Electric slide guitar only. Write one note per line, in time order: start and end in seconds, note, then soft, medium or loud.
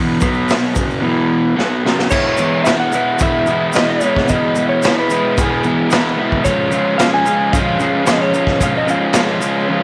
2.10 2.61 C#5 medium
2.64 2.79 E5 loud
2.80 3.21 F#5 loud
3.22 3.71 E5 loud
3.76 3.87 D#5 medium
3.90 4.31 C#5 medium
4.29 4.66 D#5 medium
4.69 4.94 C#5 medium
4.99 5.39 B4 loud
5.40 5.88 G#4 medium
6.45 6.94 C#5 medium
6.98 7.10 F5 loud
7.14 7.54 G#5 loud
7.53 8.02 F5 loud
8.09 8.20 D#5 loud
8.22 8.62 C#5 medium
8.63 8.74 F5 medium
8.77 8.89 D#5 loud
8.90 9.39 F5 loud